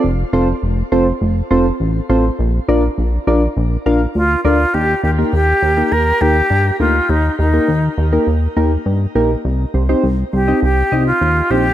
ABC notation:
X:1
M:4/4
L:1/16
Q:1/4=102
K:Bb
V:1 name="Flute"
z16 | z12 F2 F2 | [K:Eb] G2 G2 G4 B2 G4 F2 | E2 E4 z8 z2 |
z6 G2 G3 F3 G2 |]
V:2 name="Synth keys"
z2 [CFAc] z3 [CFAc] z3 [CFAc] z3 [CFAc] z | z2 [DFBd] z3 [DFBd] z3 [DFBf] z3 [DFBd] z | [K:Eb] z2 [GB] [B,EGB] z2 [GB] [B,EGB] z2 [B,EGB] z3 [B,EGB] z | z2 [GB] [B,EGB] z2 [GB] [B,EGB] z2 [B,EGB] z3 [B,EGB] z |
z2 [Gc] [CEGc] z2 [Gc] [CEGe] z2 [CEGe] z3 [CEGc] z |]
V:3 name="Analog synth bass" clef=bass
F,,,2 F,,,2 F,,,2 F,,,2 F,,,2 F,,,2 A,,,2 A,,,2 | B,,,2 B,,,2 B,,,2 B,,,2 B,,,2 B,,,2 D,,2 D,,2 | [K:Eb] E,,2 E,,2 E,,2 E,,2 E,,2 E,,2 G,,2 D,,2 | E,,2 E,,2 E,,2 E,,2 E,,2 E,,2 G,,2 B,,,2 |
C,,2 C,,2 C,,2 C,,2 C,,2 C,,2 E,,2 B,,,2 |]